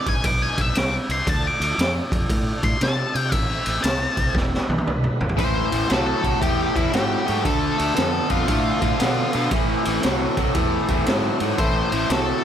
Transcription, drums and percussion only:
0.06 kick, ride
0.24 kick, ride
0.58 kick, ride
0.75 snare, ride
1.10 ride
1.27 kick, ride
1.62 ride
1.79 snare, ride
2.12 kick, ride
2.30 kick, ride
2.63 kick, ride
2.81 snare, ride
3.15 ride
3.32 kick, ride
3.66 ride
3.84 snare, ride
4.17 kick, ride
4.35 kick, snare
4.54 snare
4.70 high tom
4.78 high tom
4.87 mid tom
5.04 mid tom
5.21 floor tom
5.29 floor tom
5.38 kick, ride
5.72 ride
5.90 snare, ride
6.24 kick, ride
6.42 kick, ride
6.76 kick, ride
6.93 snare, ride
7.28 ride
7.45 kick, ride
7.79 ride
7.96 snare, ride
8.30 kick, ride
8.48 kick, ride
8.82 kick, ride
9.00 snare, ride
9.33 ride
9.51 kick, ride
9.85 ride
10.03 snare, ride
10.37 kick, ride
10.55 kick, ride
10.88 kick, ride
11.06 snare, ride
11.40 ride
11.58 kick, ride
11.92 ride
12.10 snare, ride

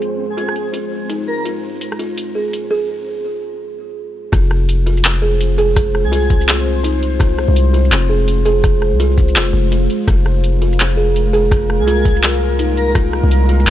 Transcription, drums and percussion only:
0.02 closed hi-hat
0.38 closed hi-hat
0.49 cross-stick
0.56 closed hi-hat
0.74 closed hi-hat
1.10 closed hi-hat
1.45 closed hi-hat
1.81 closed hi-hat
1.92 cross-stick
1.99 closed hi-hat
2.18 closed hi-hat
2.53 closed hi-hat
4.33 kick, cross-stick, closed hi-hat
4.51 cross-stick
4.69 closed hi-hat
4.87 closed hi-hat
4.97 shaker
5.05 clap, closed hi-hat
5.41 closed hi-hat
5.59 closed hi-hat
5.76 kick, cross-stick, closed hi-hat
5.95 cross-stick
6.13 closed hi-hat
6.30 kick, closed hi-hat
6.41 shaker
6.49 clap, closed hi-hat
6.84 closed hi-hat
7.03 closed hi-hat
7.20 kick, cross-stick, closed hi-hat
7.38 cross-stick
7.56 closed hi-hat
7.74 closed hi-hat
7.85 shaker
7.92 clap, closed hi-hat
8.28 closed hi-hat
8.46 closed hi-hat
8.64 kick, cross-stick, closed hi-hat
8.82 cross-stick
9.00 closed hi-hat
9.18 kick, closed hi-hat
9.28 shaker
9.36 clap, closed hi-hat
9.72 closed hi-hat
9.90 closed hi-hat
10.08 kick, cross-stick, closed hi-hat
10.26 cross-stick
10.44 closed hi-hat
10.62 closed hi-hat
10.73 shaker
10.80 clap, closed hi-hat
11.16 closed hi-hat
11.34 closed hi-hat
11.51 kick, cross-stick, closed hi-hat
11.70 cross-stick
11.88 closed hi-hat
12.05 kick, closed hi-hat
12.16 shaker
12.23 clap, closed hi-hat
12.59 closed hi-hat
12.77 closed hi-hat
12.95 kick, cross-stick, closed hi-hat
13.13 cross-stick
13.31 closed hi-hat
13.49 closed hi-hat
13.60 shaker

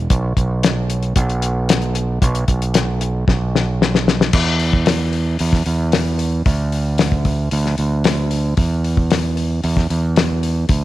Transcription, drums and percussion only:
0.10 kick, closed hi-hat
0.37 kick, closed hi-hat
0.63 snare, closed hi-hat
0.90 closed hi-hat
1.03 closed hi-hat
1.16 kick, closed hi-hat
1.30 closed hi-hat
1.42 closed hi-hat
1.69 snare, closed hi-hat
1.82 closed hi-hat
1.95 closed hi-hat
2.22 kick, closed hi-hat
2.35 closed hi-hat
2.48 kick, closed hi-hat
2.62 closed hi-hat
2.74 snare, closed hi-hat
3.01 closed hi-hat
3.28 kick, snare
3.56 snare
3.82 snare
3.95 snare
4.08 snare
4.21 snare
4.33 kick, crash
4.59 open hi-hat
4.73 kick
4.86 snare, open hi-hat
5.13 open hi-hat
5.39 open hi-hat
5.53 kick, snare
5.66 open hi-hat
5.92 snare, open hi-hat
6.19 open hi-hat
6.46 kick, open hi-hat
6.72 open hi-hat
6.98 snare, open hi-hat
7.12 kick
7.25 kick, open hi-hat
7.51 open hi-hat
7.66 snare
7.78 open hi-hat
8.04 snare, open hi-hat
8.31 open hi-hat
8.57 kick, open hi-hat
8.84 open hi-hat
8.97 kick
9.11 snare, open hi-hat
9.37 open hi-hat
9.64 open hi-hat
9.77 kick, snare
9.90 open hi-hat
10.16 snare, open hi-hat
10.43 open hi-hat
10.69 kick, open hi-hat

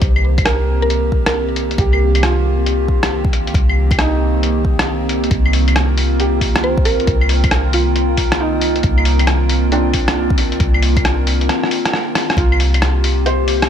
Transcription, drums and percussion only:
0.02 kick, closed hi-hat
0.16 claves
0.38 kick, closed hi-hat, claves
0.46 cross-stick, closed hi-hat
0.90 closed hi-hat
1.12 kick
1.26 cross-stick, closed hi-hat
1.56 closed hi-hat
1.71 closed hi-hat
1.78 kick, closed hi-hat
1.93 claves
2.15 closed hi-hat, claves
2.23 cross-stick, closed hi-hat
2.66 closed hi-hat
2.88 kick
3.03 cross-stick, closed hi-hat
3.25 kick
3.33 closed hi-hat
3.47 closed hi-hat
3.54 kick, closed hi-hat
3.69 claves
3.91 kick, closed hi-hat, claves
3.99 cross-stick, closed hi-hat
4.43 closed hi-hat
4.65 kick
4.79 cross-stick, closed hi-hat
5.09 closed hi-hat
5.24 closed hi-hat
5.31 kick, closed hi-hat
5.46 claves
5.53 open hi-hat
5.68 closed hi-hat, claves
5.76 cross-stick, closed hi-hat
5.98 open hi-hat
6.20 closed hi-hat
6.41 kick, open hi-hat
6.56 cross-stick, closed hi-hat
6.78 kick
6.85 open hi-hat
7.00 closed hi-hat
7.07 kick, closed hi-hat
7.21 claves
7.29 open hi-hat
7.44 kick, closed hi-hat, claves
7.51 cross-stick, closed hi-hat
7.73 open hi-hat
7.96 closed hi-hat
8.17 kick, open hi-hat
8.32 cross-stick, closed hi-hat
8.61 open hi-hat
8.76 closed hi-hat
8.83 kick, closed hi-hat
8.98 claves
9.05 open hi-hat
9.19 closed hi-hat, claves
9.27 cross-stick, closed hi-hat
9.49 open hi-hat
9.72 closed hi-hat
9.94 kick, open hi-hat
10.08 cross-stick, closed hi-hat
10.30 kick
10.38 open hi-hat
10.52 closed hi-hat
10.60 kick, closed hi-hat
10.74 claves
10.83 open hi-hat
10.97 kick, closed hi-hat, claves
11.05 cross-stick, closed hi-hat
11.27 open hi-hat
11.41 closed hi-hat
11.49 cross-stick, closed hi-hat
11.64 cross-stick
11.71 open hi-hat
11.86 cross-stick, closed hi-hat
11.93 cross-stick
12.15 cross-stick, open hi-hat
12.30 cross-stick, closed hi-hat
12.37 kick, closed hi-hat
12.52 claves
12.60 open hi-hat
12.74 closed hi-hat, claves
12.82 cross-stick, closed hi-hat
13.04 open hi-hat
13.26 closed hi-hat
13.48 open hi-hat
13.62 cross-stick, closed hi-hat

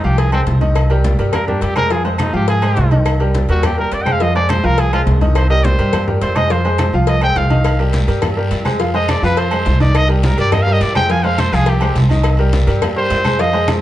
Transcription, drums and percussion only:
0.04 high conga
0.18 cowbell, high conga, low agogo
0.32 high conga, low agogo, claves
0.47 cowbell, high conga
0.61 high conga, low agogo
0.75 cowbell, low agogo, claves
0.90 high conga, low agogo
1.04 cowbell, high conga
1.19 high conga, low agogo
1.33 cowbell, high conga, low conga, low agogo, claves
1.48 high conga, low conga
1.61 cowbell, high conga, low agogo
1.76 high conga, low agogo, claves
1.90 cowbell, high conga
2.05 high conga, low agogo
2.18 cowbell, high conga, low agogo, claves
2.35 high conga
2.48 cowbell, high conga, low agogo
2.62 high conga, low agogo, claves
2.76 cowbell, high conga, low timbale
2.91 high conga, low agogo
3.06 cowbell, low agogo, claves
3.20 high conga, low agogo
3.35 cowbell, high conga
3.49 high conga, low agogo
3.63 cowbell, high conga, low conga, low agogo, claves
3.78 high conga
3.92 cowbell, high conga, low agogo
4.06 high conga, low agogo, claves
4.20 cowbell, high conga
4.36 high conga, low agogo
4.49 cowbell, high conga, low agogo, claves
4.65 high conga
4.78 cowbell, high conga, low agogo
4.93 high conga, low agogo, claves
5.07 cowbell, high conga, low timbale
5.21 high conga, low agogo
5.35 cowbell, low agogo, claves
5.50 high conga, low agogo
5.64 cowbell, high conga
5.79 low agogo
5.93 cowbell, high conga, low conga, low agogo, claves
6.08 high conga, low conga
6.21 cowbell, high conga, low timbale, low agogo
6.36 high conga, low agogo, claves
6.50 cowbell, high conga
6.65 high conga, low agogo
6.78 cowbell, high conga, low agogo, claves
6.94 high conga
7.07 cowbell, high conga, low agogo
7.21 high conga, low agogo, claves
7.36 cowbell, high conga, low timbale
7.50 high conga, low agogo
7.64 cowbell, high conga, low agogo, long guiro, claves
7.79 high conga, low agogo
7.93 cowbell, high conga, short guiro
8.08 high conga, low agogo, short guiro
8.22 cowbell, high conga, low conga, low agogo, long guiro, claves
8.37 high conga
8.51 cowbell, high conga, low timbale, low agogo, short guiro
8.65 high conga, low agogo, short guiro, claves
8.80 cowbell, high conga, long guiro
8.94 high conga, low agogo
9.09 cowbell, high conga, low agogo, short guiro, claves
9.24 high conga, short guiro
9.37 cowbell, high conga, low agogo, long guiro
9.51 high conga, low agogo, claves
9.66 cowbell, high conga, low timbale, short guiro
9.80 high conga, low agogo, short guiro
9.95 cowbell, high conga, low agogo, long guiro, claves
10.10 high conga, low agogo
10.23 cowbell, high conga, short guiro
10.38 high conga, low agogo, short guiro
10.52 cowbell, high conga, low conga, low agogo, long guiro, claves
10.67 high conga
10.81 cowbell, high conga, low timbale, low agogo, short guiro
10.95 high conga, low agogo, short guiro, claves
11.10 cowbell, high conga, long guiro
11.23 high conga, low agogo
11.38 cowbell, high conga, low agogo, short guiro, claves
11.53 high conga, short guiro
11.66 cowbell, high conga, low agogo, long guiro
11.81 high conga, low agogo, claves
11.95 cowbell, high conga, low timbale, short guiro
12.09 high conga, low agogo, short guiro
12.23 cowbell, high conga, low agogo, long guiro, claves
12.38 high conga, low agogo
12.53 cowbell, high conga, short guiro
12.67 high conga, low agogo, short guiro
12.82 cowbell, high conga, low conga, low agogo, long guiro, claves
12.96 high conga
13.10 cowbell, high conga, low timbale, low agogo, short guiro
13.25 high conga, low agogo, short guiro, claves
13.39 cowbell, high conga, long guiro
13.53 high conga, low agogo
13.68 cowbell, high conga, low agogo, short guiro, claves

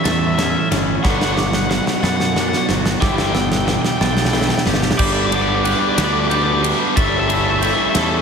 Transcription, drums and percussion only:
0.05 snare, ride
0.39 snare, ride
0.72 snare, ride
1.05 kick, snare
1.21 snare
1.37 snare
1.53 snare
1.71 snare
1.87 snare
2.04 snare
2.20 snare
2.36 snare
2.53 snare
2.69 snare
2.86 snare
3.02 kick, snare
3.18 snare
3.35 snare
3.52 snare
3.68 snare
3.84 snare
4.01 snare
4.17 snare
4.25 snare
4.33 snare
4.41 snare
4.49 snare
4.58 snare
4.66 snare
4.74 snare
4.82 snare
4.91 snare
4.99 kick, crash
5.32 ride
5.65 ride
5.98 snare, ride
6.31 ride
6.64 ride
6.97 kick, ride
7.30 ride
7.62 ride
7.95 snare, ride

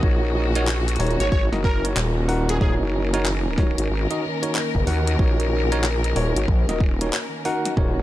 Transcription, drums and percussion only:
0.03 kick
0.55 closed hi-hat
0.67 clap
0.88 closed hi-hat
0.96 closed hi-hat
1.00 closed hi-hat, open hi-hat
1.07 closed hi-hat
1.11 closed hi-hat
1.20 closed hi-hat
1.32 kick
1.53 snare
1.64 kick
1.85 closed hi-hat
1.97 clap
2.29 open hi-hat
2.49 snare, closed hi-hat
2.61 kick
3.14 closed hi-hat
3.25 clap
3.58 kick, snare
3.78 closed hi-hat
4.11 closed hi-hat
4.43 closed hi-hat
4.55 clap
4.75 kick
4.87 open hi-hat
5.07 closed hi-hat
5.19 kick
5.40 closed hi-hat
5.72 closed hi-hat
5.84 clap
6.04 closed hi-hat
6.16 open hi-hat
6.37 closed hi-hat
6.48 kick
6.69 snare, closed hi-hat
6.80 kick
7.01 closed hi-hat
7.13 clap
7.45 open hi-hat
7.65 snare, closed hi-hat
7.77 kick

